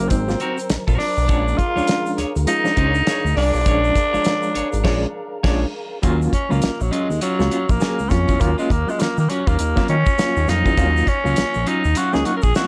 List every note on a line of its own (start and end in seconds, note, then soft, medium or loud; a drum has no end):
0.00 1.25 F#3 medium
0.00 0.10 A#3 medium
0.00 1.25 A#4 medium
0.00 1.25 C5 medium
0.00 1.27 A#5 medium
0.00 muted clean electric guitar stroke soft
0.00 closed hi-hat soft
0.09 0.36 G#1 medium
0.09 0.22 F#3 medium
0.09 0.22 A#3 medium
0.09 0.69 C4 medium
0.09 0.23 C4 medium
0.09 0.23 D#4 medium
0.09 kick loud
0.09 closed hi-hat medium
0.09 shaker medium
0.28 0.36 F#3 medium
0.28 0.36 A#3 medium
0.28 0.37 C4 medium
0.28 0.37 F4 medium
0.28 muted clean electric guitar stroke soft
0.28 snare soft
0.28 shaker medium
0.40 0.49 C4 soft
0.40 0.58 C4 medium
0.40 0.50 D#4 soft
0.40 0.58 F#4 loud
0.40 0.57 A#4 medium
0.40 closed hi-hat medium
0.58 muted clean electric guitar stroke soft
0.58 closed hi-hat medium
0.58 shaker medium
0.70 0.78 A#1 medium
0.70 muted clean electric guitar stroke soft
0.70 snare loud
0.70 closed hi-hat medium
0.70 shaker medium
0.87 0.98 A#1 medium
0.87 0.98 C4 medium
0.87 0.99 F#4 medium
0.87 0.99 A#4 medium
0.87 kick medium
0.87 shaker medium
0.98 1.08 C4 soft
0.98 1.59 D4 loud
0.98 1.09 F4 soft
0.98 muted clean electric guitar stroke soft
0.98 snare soft
0.98 open hi-hat medium
1.17 1.28 B1 loud
1.17 muted clean electric guitar stroke soft
1.17 shaker medium
1.28 1.55 A#1 loud
1.28 1.58 F3 medium
1.28 1.58 G#3 medium
1.28 1.58 C#4 loud
1.28 1.46 D4 medium
1.28 1.58 D4 loud
1.28 1.47 G#4 medium
1.28 5.99 G#4 medium
1.28 5.99 A#4 medium
1.28 1.47 C#5 medium
1.28 5.99 F5 medium
1.28 5.99 A#5 medium
1.28 kick loud
1.28 closed hi-hat medium
1.28 shaker medium
1.48 shaker medium
1.58 2.18 F4 loud
1.58 muted clean electric guitar stroke soft
1.58 kick medium
1.58 closed hi-hat medium
1.76 1.82 D2 soft
1.76 2.21 F3 medium
1.76 2.21 G#3 medium
1.76 2.22 C#4 medium
1.76 2.22 D4 medium
1.76 1.86 D4 medium
1.76 1.86 G#4 medium
1.76 1.85 C#5 medium
1.76 shaker soft
1.87 muted clean electric guitar stroke soft
1.87 snare medium
1.87 closed hi-hat medium
1.87 shaker medium
2.06 shaker medium
2.18 2.25 D2 medium
2.18 2.31 D4 medium
2.18 2.32 G#4 medium
2.18 2.32 C#5 medium
2.18 snare soft
2.18 closed hi-hat medium
2.35 2.46 D2 medium
2.35 muted clean electric guitar stroke soft
2.35 closed hi-hat soft
2.35 shaker medium
2.46 2.59 F3 medium
2.46 2.59 G#3 medium
2.46 2.59 C#4 medium
2.46 2.75 D#4 loud
2.46 2.59 F4 medium
2.46 closed hi-hat loud
2.46 shaker medium
2.64 2.73 F3 medium
2.64 2.73 G#3 medium
2.64 2.73 C#4 medium
2.64 2.73 D4 medium
2.64 muted clean electric guitar stroke soft
2.64 snare soft
2.64 shaker medium
2.77 3.03 C#2 medium
2.77 2.86 C#4 soft
2.77 2.99 D4 medium
2.77 3.33 D#4 loud
2.77 2.86 F4 soft
2.77 2.95 G#4 loud
2.77 2.94 C#5 loud
2.77 kick medium
2.77 closed hi-hat medium
2.95 muted clean electric guitar stroke soft
2.95 shaker medium
3.06 3.18 G#3 medium
3.06 3.24 D4 medium
3.06 3.18 F4 medium
3.06 3.25 G#4 medium
3.06 3.18 C#5 medium
3.06 3.24 C#5 medium
3.06 snare loud
3.06 closed hi-hat medium
3.06 shaker medium
3.25 3.35 D2 medium
3.25 muted clean electric guitar stroke soft
3.25 shaker medium
3.35 3.52 C2 medium
3.35 3.76 G#3 medium
3.35 3.45 C#4 soft
3.35 3.50 D4 medium
3.35 5.40 D4 loud
3.35 3.46 D4 soft
3.35 3.76 F4 loud
3.35 3.51 G#4 medium
3.35 3.76 D5 loud
3.35 3.51 D5 medium
3.35 snare soft
3.35 open hi-hat medium
3.54 3.64 B1 medium
3.54 muted clean electric guitar stroke soft
3.54 shaker medium
3.66 3.92 A#1 loud
3.66 3.95 F3 medium
3.66 3.95 G#3 loud
3.66 3.95 C#4 loud
3.66 3.83 D4 medium
3.66 3.95 D4 loud
3.66 3.84 G#4 loud
3.66 3.84 C#5 loud
3.66 kick loud
3.66 closed hi-hat medium
3.66 shaker medium
3.84 shaker medium
3.95 kick medium
3.95 closed hi-hat medium
3.95 shaker medium
4.13 4.19 G#1 medium
4.13 4.59 F3 medium
4.13 4.59 G#3 medium
4.13 4.23 D4 medium
4.13 4.59 D4 medium
4.13 4.23 G#4 medium
4.13 4.22 C#5 medium
4.13 4.59 C#5 medium
4.13 shaker soft
4.24 snare loud
4.24 closed hi-hat medium
4.24 shaker medium
4.43 shaker medium
4.54 4.63 G#1 medium
4.54 4.68 D4 medium
4.54 4.69 G#4 medium
4.54 4.69 C#5 medium
4.54 closed hi-hat medium
4.73 4.84 G#1 loud
4.73 muted clean electric guitar stroke soft
4.73 closed hi-hat soft
4.73 shaker medium
4.84 5.06 A#1 loud
4.84 5.06 F3 medium
4.84 5.06 G#3 loud
4.84 5.01 G#3 loud
4.84 5.06 C#4 loud
4.84 5.06 D4 loud
4.84 5.01 F4 loud
4.84 5.06 G#4 medium
4.84 5.05 C#5 medium
4.84 5.01 D5 loud
4.84 kick loud
4.84 snare loud
4.84 crash medium
5.43 5.65 A#1 loud
5.43 5.65 F3 loud
5.43 5.59 G#3 medium
5.43 5.65 G#3 loud
5.43 5.65 C#4 loud
5.43 5.66 D4 loud
5.43 5.60 F4 medium
5.43 5.65 G#4 loud
5.43 5.65 C#5 loud
5.43 5.59 D5 medium
5.43 kick loud
5.43 snare loud
5.43 crash medium
6.02 6.29 D#2 loud
6.02 6.31 F#3 loud
6.02 6.20 F#3 medium
6.02 6.32 A#3 loud
6.02 6.32 C#4 loud
6.02 6.20 C#4 medium
6.02 6.32 F4 loud
6.02 6.20 F4 loud
6.02 kick loud
6.02 closed hi-hat medium
6.02 shaker medium
6.21 muted clean electric guitar stroke soft
6.21 shaker medium
6.33 6.53 C#4 medium
6.33 muted clean electric guitar stroke soft
6.33 kick medium
6.33 closed hi-hat medium
6.49 6.61 C#2 medium
6.49 6.78 F#3 medium
6.49 6.60 F#3 medium
6.49 6.78 A#3 medium
6.49 6.83 A#3 medium
6.49 6.79 C#4 medium
6.49 6.60 C#4 medium
6.49 6.60 F4 medium
6.49 6.79 F4 medium
6.49 shaker soft
6.62 6.70 A#1 soft
6.62 muted clean electric guitar stroke soft
6.62 snare loud
6.62 closed hi-hat medium
6.62 shaker medium
6.80 6.91 A#1 medium
6.80 6.94 F#3 medium
6.80 muted clean electric guitar stroke medium
6.80 shaker medium
6.91 7.09 F#3 medium
6.91 7.21 G#3 medium
6.91 7.01 C#4 soft
6.91 7.09 C#4 loud
6.91 7.08 F4 loud
6.91 7.01 F4 soft
6.91 closed hi-hat medium
7.09 7.20 D#2 medium
7.09 muted clean electric guitar stroke soft
7.09 shaker medium
7.21 7.39 F#3 medium
7.21 7.72 F#3 medium
7.21 7.30 C#4 soft
7.21 7.39 C#4 medium
7.21 7.31 D#4 soft
7.21 7.38 F4 medium
7.21 closed hi-hat medium
7.21 shaker medium
7.39 7.50 C#2 loud
7.39 7.56 F#3 medium
7.39 7.56 A#3 medium
7.39 7.56 C#4 medium
7.39 7.57 F4 medium
7.39 muted clean electric guitar stroke soft
7.39 snare soft
7.39 shaker medium
7.51 7.65 F#3 medium
7.51 7.65 C#4 medium
7.51 7.66 F4 medium
7.51 closed hi-hat medium
7.69 7.79 A#1 loud
7.69 8.12 A#3 medium
7.69 7.75 C#4 soft
7.69 7.75 F#4 soft
7.69 kick loud
7.69 shaker medium
7.80 8.02 F#3 medium
7.80 7.98 F#3 medium
7.80 8.02 A#3 medium
7.80 8.02 C#4 medium
7.80 7.98 C#4 medium
7.80 7.99 F4 medium
7.80 8.02 G#4 medium
7.80 snare loud
7.80 closed hi-hat medium
7.80 shaker medium
7.99 8.10 C#2 medium
7.99 shaker medium
8.10 8.26 F2 loud
8.10 8.31 F#3 medium
8.10 8.32 A#3 medium
8.10 8.43 C#4 medium
8.10 8.32 C#4 medium
8.10 8.32 F4 medium
8.10 muted clean electric guitar stroke soft
8.10 kick medium
8.10 snare soft
8.10 closed hi-hat medium
8.10 shaker medium
8.28 8.39 E2 loud
8.28 8.38 F#3 medium
8.28 8.38 C#4 medium
8.28 8.37 F4 medium
8.28 kick medium
8.28 shaker medium
8.39 8.56 D#2 loud
8.39 8.69 F#3 loud
8.39 8.69 A#3 medium
8.39 8.58 A#3 loud
8.39 8.69 C#4 loud
8.39 8.69 F4 loud
8.39 muted clean electric guitar stroke soft
8.39 kick loud
8.39 closed hi-hat medium
8.39 shaker medium
8.58 8.69 F#3 medium
8.58 8.73 G#3 medium
8.58 8.70 C#4 medium
8.58 8.69 F4 medium
8.58 shaker medium
8.70 8.85 D#2 medium
8.70 8.91 A#3 medium
8.70 muted clean electric guitar stroke soft
8.70 kick medium
8.70 closed hi-hat medium
8.87 9.16 F#3 medium
8.87 9.02 G#3 medium
8.87 9.16 A#3 medium
8.87 9.16 C#4 medium
8.87 9.16 F4 medium
8.87 muted clean electric guitar stroke soft
8.87 shaker soft
8.99 9.08 D#3 soft
8.99 9.18 A#3 medium
8.99 muted clean electric guitar stroke soft
8.99 snare medium
8.99 closed hi-hat medium
8.99 shaker medium
9.17 9.28 D#3 medium
9.17 9.31 A#3 medium
9.17 muted clean electric guitar stroke soft
9.17 shaker medium
9.29 9.43 F#3 medium
9.29 9.38 C#4 soft
9.29 9.50 C#4 medium
9.29 9.43 C#4 medium
9.29 9.39 F4 soft
9.29 9.44 F#4 medium
9.29 closed hi-hat medium
9.47 9.57 D#2 loud
9.47 9.57 F#3 medium
9.47 9.89 A#3 loud
9.47 9.57 C#4 medium
9.47 9.56 F4 medium
9.47 kick loud
9.47 shaker medium
9.59 9.75 D#2 loud
9.59 9.67 C#4 soft
9.59 9.68 F4 soft
9.59 muted clean electric guitar stroke soft
9.59 closed hi-hat loud
9.59 shaker medium
9.76 9.93 F#3 medium
9.76 9.87 F#3 medium
9.76 9.93 A#3 medium
9.76 9.94 C#4 medium
9.76 9.88 C#4 medium
9.76 9.89 F4 medium
9.76 9.94 F4 medium
9.76 kick loud
9.76 snare soft
9.76 shaker medium
9.88 10.04 D#3 loud
9.88 10.51 C#4 loud
9.88 muted clean electric guitar stroke soft
9.88 closed hi-hat medium
10.06 10.12 C#4 soft
10.06 10.13 F4 soft
10.06 muted clean electric guitar stroke soft
10.06 kick loud
10.06 shaker medium
10.18 10.39 F#3 medium
10.18 10.39 A#3 medium
10.18 10.40 C#4 medium
10.18 10.40 F4 medium
10.18 muted clean electric guitar stroke soft
10.18 snare loud
10.18 closed hi-hat medium
10.18 shaker medium
10.37 10.47 D#2 loud
10.37 muted clean electric guitar stroke soft
10.37 shaker medium
10.47 10.64 F2 medium
10.47 10.69 F#3 medium
10.47 10.62 F#3 medium
10.47 10.69 A#3 medium
10.47 10.69 C#4 medium
10.47 10.62 C#4 medium
10.47 11.10 D#4 loud
10.47 10.69 F4 medium
10.47 10.63 F4 medium
10.47 snare soft
10.47 closed hi-hat medium
10.47 shaker soft
10.66 10.76 E2 medium
10.66 10.76 F#3 medium
10.66 10.75 C#4 medium
10.66 10.75 F4 medium
10.66 kick medium
10.66 shaker medium
10.77 11.03 D#2 loud
10.77 11.06 F#3 loud
10.77 11.00 F#3 medium
10.77 11.06 A#3 loud
10.77 11.06 C#4 loud
10.77 10.96 C#4 loud
10.77 11.07 F4 loud
10.77 10.94 F4 medium
10.77 kick loud
10.77 closed hi-hat medium
10.77 shaker medium
10.95 muted clean electric guitar stroke medium
10.95 shaker medium
11.07 11.70 C#4 loud
11.07 muted clean electric guitar stroke soft
11.07 kick medium
11.07 closed hi-hat medium
11.24 11.35 C#2 medium
11.24 11.53 F#3 medium
11.24 11.35 F#3 medium
11.24 11.53 A#3 medium
11.24 11.53 C#4 medium
11.24 11.35 C#4 medium
11.24 11.53 F4 medium
11.24 11.34 F4 medium
11.24 shaker soft
11.36 11.45 A#1 soft
11.36 muted clean electric guitar stroke soft
11.36 snare loud
11.36 closed hi-hat medium
11.36 shaker medium
11.54 11.66 A#1 medium
11.54 muted clean electric guitar stroke soft
11.54 shaker medium
11.66 11.83 F#3 medium
11.66 11.75 C#4 soft
11.66 11.84 C#4 medium
11.66 11.99 D#4 medium
11.66 11.83 F4 loud
11.66 11.76 F4 soft
11.66 closed hi-hat medium
11.84 11.95 D#2 medium
11.84 muted clean electric guitar stroke medium
11.84 shaker medium
11.95 12.13 F#3 medium
11.95 12.04 C#4 soft
11.95 12.14 C#4 medium
11.95 12.05 F4 soft
11.95 12.14 F4 loud
11.95 12.16 F#4 loud
11.95 closed hi-hat loud
11.95 shaker medium
12.13 12.25 C#2 medium
12.13 12.30 F#3 medium
12.13 12.31 A#3 medium
12.13 12.31 C#4 medium
12.13 12.31 D#4 loud
12.13 12.27 G#4 medium
12.13 snare soft
12.13 shaker soft
12.25 12.39 F#3 medium
12.25 12.40 C#4 medium
12.25 12.40 F4 medium
12.25 12.36 F#4 loud
12.25 closed hi-hat medium
12.37 12.45 A#4 medium
12.42 12.54 A#1 medium
12.42 12.49 C#4 soft
12.42 12.50 F4 soft
12.42 12.55 G#4 loud
12.42 kick loud
12.42 shaker medium
12.54 12.67 F#3 medium
12.54 12.67 A#3 medium
12.54 12.67 C#4 medium
12.54 12.67 F4 medium
12.54 12.67 F#4 medium
12.54 snare loud
12.54 closed hi-hat medium
12.54 shaker medium